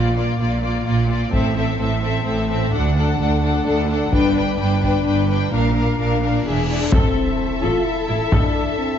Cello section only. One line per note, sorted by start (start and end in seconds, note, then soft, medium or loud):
0.00 0.35 A#2 soft
0.40 0.81 A#2 soft
0.87 1.28 A#2 soft
1.33 1.75 A2 medium
1.80 2.21 A2 soft
2.26 2.68 A2 medium
2.74 3.15 D2 medium
3.19 3.61 D2 soft
3.66 4.08 D2 medium
4.14 4.55 G2 medium
4.61 5.01 G2 medium
5.07 5.48 G2 medium
5.53 5.94 A#2 medium
6.00 6.41 A#2 soft
6.47 6.88 E2 soft
6.93 7.01 A2 medium
7.64 7.72 A2 medium
8.10 8.18 A2 soft
8.33 8.41 A2 medium